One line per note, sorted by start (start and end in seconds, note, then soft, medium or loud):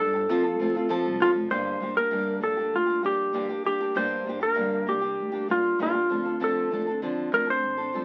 0.00 0.23 G2 medium
0.00 0.13 G3 medium
0.00 0.14 D4 medium
0.00 0.14 G4 medium
0.00 0.12 A4 medium
0.00 1.17 A4 medium
0.13 0.29 D4 soft
0.13 0.29 G4 soft
0.13 0.28 A4 soft
0.29 0.54 F2 loud
0.29 0.44 F3 medium
0.29 0.44 C4 medium
0.29 0.44 F4 medium
0.29 0.42 A4 medium
0.44 0.59 C4 soft
0.44 0.60 F4 soft
0.44 0.59 A4 medium
0.59 0.84 D2 medium
0.59 0.75 F3 medium
0.59 0.75 C4 medium
0.59 0.75 F4 medium
0.59 0.74 A4 medium
0.75 0.89 C4 medium
0.75 0.89 F4 medium
0.75 0.89 A4 soft
0.89 1.19 F3 medium
0.89 1.20 C4 medium
0.89 1.21 F4 loud
0.89 1.21 A4 loud
1.06 1.18 C2 medium
1.20 1.33 G1 loud
1.20 1.51 F3 medium
1.20 1.51 C4 medium
1.20 1.30 F4 medium
1.20 1.51 F4 medium
1.20 1.51 A4 medium
1.36 1.48 F1 medium
1.50 1.76 G1 medium
1.50 1.81 G2 medium
1.50 1.81 D3 medium
1.50 1.79 G3 medium
1.50 1.80 A#3 medium
1.50 1.81 D4 medium
1.50 1.82 G4 medium
1.50 1.94 C5 medium
1.80 2.14 G1 medium
1.80 1.96 G3 soft
1.80 1.97 A#3 soft
1.80 1.97 D4 soft
1.80 1.96 G4 medium
1.97 2.10 G3 soft
1.97 2.10 A#3 soft
1.97 2.11 D4 soft
1.97 2.11 G4 soft
1.97 2.43 A#4 medium
2.10 2.42 G2 medium
2.10 2.37 G2 medium
2.10 2.42 D3 medium
2.10 2.40 G3 medium
2.10 2.40 A#3 medium
2.10 2.42 D4 medium
2.10 2.42 G4 medium
2.41 2.68 A#1 medium
2.41 2.57 G3 soft
2.41 2.57 A#3 medium
2.41 2.57 D4 medium
2.41 2.56 G4 medium
2.41 2.75 A4 medium
2.57 2.88 G3 soft
2.57 2.87 A#3 soft
2.57 2.86 D4 soft
2.57 2.85 G4 soft
2.73 2.98 D2 medium
2.73 3.03 F4 medium
2.86 3.01 G3 soft
2.86 3.02 A#3 soft
2.86 3.03 D4 soft
2.86 3.03 G4 soft
3.02 3.54 A#1 medium
3.02 3.33 G3 medium
3.02 3.33 A#3 medium
3.02 3.33 D4 medium
3.02 3.34 G4 medium
3.02 3.62 G4 medium
3.33 3.49 G2 medium
3.33 3.49 D3 medium
3.33 3.49 G3 medium
3.33 3.49 A#3 medium
3.33 3.49 D4 medium
3.33 3.48 G4 medium
3.49 3.64 G3 soft
3.49 3.65 A#3 soft
3.49 3.65 D4 soft
3.49 3.65 G4 soft
3.65 3.80 G3 medium
3.65 3.80 A#3 soft
3.65 3.80 D4 medium
3.65 3.97 G4 medium
3.65 3.79 G4 medium
3.80 3.94 G3 soft
3.80 3.95 A#3 soft
3.80 3.95 D4 soft
3.80 3.96 G4 soft
3.95 4.22 G1 medium
3.95 4.26 G2 medium
3.95 4.26 D3 medium
3.95 4.25 G3 medium
3.95 4.26 A#3 medium
3.95 4.27 D4 medium
3.95 4.27 G4 medium
3.95 4.42 C5 medium
4.26 4.52 G1 medium
4.26 4.42 G3 soft
4.26 4.41 A#3 soft
4.26 4.40 D4 medium
4.26 4.39 G4 medium
4.40 4.55 G3 soft
4.40 4.55 A#3 soft
4.40 4.56 D4 soft
4.40 4.56 G4 soft
4.40 4.90 A#4 medium
4.55 4.87 G2 medium
4.55 4.83 G2 medium
4.55 4.87 D3 medium
4.55 4.85 G3 medium
4.55 4.86 A#3 medium
4.55 4.87 D4 medium
4.55 4.87 G4 medium
4.86 5.13 C2 medium
4.86 5.02 G3 soft
4.86 5.02 A#3 medium
4.86 5.01 D4 medium
4.86 5.00 G4 medium
4.86 5.51 G4 medium
5.01 5.34 G3 soft
5.01 5.33 A#3 soft
5.01 5.32 D4 soft
5.01 5.31 G4 soft
5.20 5.44 D2 medium
5.32 5.47 G3 soft
5.32 5.48 A#3 soft
5.32 5.49 D4 soft
5.32 5.48 G4 soft
5.48 5.74 G1 medium
5.48 5.79 G3 medium
5.48 5.79 A#3 medium
5.48 5.80 D4 medium
5.48 5.81 F4 medium
5.48 5.80 G4 medium
5.79 6.05 A#1 medium
5.79 5.95 G2 medium
5.79 5.95 D3 medium
5.79 5.94 G3 medium
5.79 5.94 A#3 medium
5.79 5.92 D4 medium
5.79 6.38 F4 medium
5.79 5.92 G4 medium
5.93 6.09 G3 soft
5.93 6.09 A#3 soft
5.93 6.09 D4 soft
5.93 6.09 G4 soft
6.09 6.61 D2 medium
6.09 6.25 F3 soft
6.09 6.25 C4 medium
6.09 6.25 D4 soft
6.09 6.24 A4 soft
6.25 6.39 C4 soft
6.25 6.40 D4 soft
6.25 6.40 A4 soft
6.40 6.71 D3 medium
6.40 6.70 F3 medium
6.40 6.71 C4 medium
6.40 6.71 D4 medium
6.40 6.72 A4 medium
6.44 7.00 A4 medium
6.71 6.97 D2 medium
6.71 6.86 F3 soft
6.71 6.87 C4 soft
6.71 6.87 D4 soft
6.71 6.86 A4 medium
6.87 7.01 C4 soft
6.87 7.02 D4 soft
6.87 7.02 A4 medium
7.02 7.33 D3 medium
7.02 7.28 D3 medium
7.02 7.30 F3 medium
7.02 7.31 C4 medium
7.02 7.32 D4 medium
7.02 7.32 A4 medium
7.32 7.58 D2 medium
7.32 7.47 F3 soft
7.32 7.48 C4 medium
7.32 7.46 D4 medium
7.32 7.45 A4 medium
7.32 7.48 A#4 medium
7.46 7.79 C4 soft
7.46 7.78 D4 soft
7.46 7.76 A4 soft
7.50 8.05 C5 medium
7.63 7.88 A1 medium
7.77 7.93 C4 soft
7.77 7.93 D4 soft
7.77 7.93 A4 soft
7.93 8.05 C2 medium
7.93 8.05 F3 medium
7.93 8.05 C4 medium
7.93 8.05 D4 medium
7.93 8.05 A4 medium